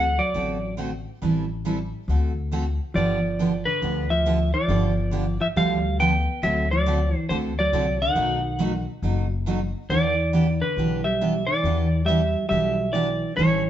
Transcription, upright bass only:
0.00 0.18 D2 medium
0.34 1.04 A1 medium
1.22 1.91 A1 medium
2.08 2.78 D2 medium
2.95 3.65 G1 medium
3.82 4.52 D2 medium
4.68 5.38 G1 medium
5.56 6.26 D2 medium
6.43 7.12 D2 medium
7.30 7.67 D2 medium
7.73 8.10 C2 medium
8.15 8.85 B1 medium
9.02 9.72 F#1 medium
9.90 10.59 E2 medium
10.76 11.46 B1 medium
11.64 12.33 E2 medium
12.50 13.20 B1 medium
13.38 13.70 A1 medium

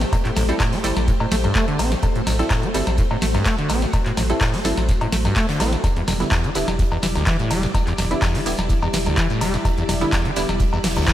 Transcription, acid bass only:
0.01 0.05 A2 medium
0.13 0.17 A2 medium
0.25 0.31 A2 medium
0.36 0.43 A1 medium
0.60 0.74 A2 medium
0.73 0.79 A3 loud
1.08 1.12 A2 medium
1.20 1.27 A2 medium
1.32 1.36 A3 medium
1.44 1.53 G2 medium
1.55 1.66 A3 loud
1.68 1.81 D3 medium
1.79 1.93 C4 medium
1.92 1.95 A2 medium
2.03 2.07 A2 medium
2.15 2.22 A2 medium
2.27 2.34 A1 medium
2.51 2.65 A2 medium
2.63 2.69 A3 loud
2.98 3.02 A2 medium
3.11 3.17 A2 medium
3.22 3.26 A3 medium
3.35 3.44 G2 medium
3.46 3.56 A3 loud
3.58 3.71 D3 medium
3.70 3.84 C4 medium
3.82 3.86 A2 medium
3.94 3.98 A2 medium
4.06 4.12 A2 medium
4.17 4.24 A1 medium
4.41 4.55 A2 medium
4.53 4.60 A3 loud
4.89 4.93 A2 medium
5.01 5.07 A2 medium
5.12 5.17 A3 medium
5.25 5.34 G2 medium
5.36 5.47 A3 loud
5.49 5.62 D3 medium
5.60 5.74 C4 medium
5.73 5.76 A2 medium
5.84 5.88 E2 medium
5.96 6.03 E2 medium
6.08 6.15 E1 medium
6.32 6.46 E2 medium
6.44 6.50 E3 loud
6.79 6.83 E2 medium
6.92 6.98 E2 medium
7.03 7.07 E3 medium
7.16 7.25 D2 medium
7.27 7.37 E3 loud
7.39 7.52 A2 medium
7.51 7.65 G3 medium
7.63 7.67 E2 medium
7.74 7.79 E2 medium
7.87 7.93 E2 medium
7.98 8.05 E1 medium
8.22 8.36 E2 medium
8.35 8.41 E3 loud
8.70 8.74 E2 medium
8.82 8.88 E2 medium
8.94 8.98 E3 medium
9.06 9.15 D2 medium
9.17 9.28 E3 loud
9.30 9.43 A2 medium
9.41 9.55 G3 medium
9.54 9.57 E2 medium
9.65 9.69 E2 medium
9.77 9.84 E2 medium
9.89 9.96 E1 medium
10.13 10.26 E2 medium
10.25 10.31 E3 loud
10.60 10.64 E2 medium
10.73 10.79 E2 medium
10.84 10.88 E3 medium
10.97 11.06 D2 medium
11.08 11.13 E3 loud

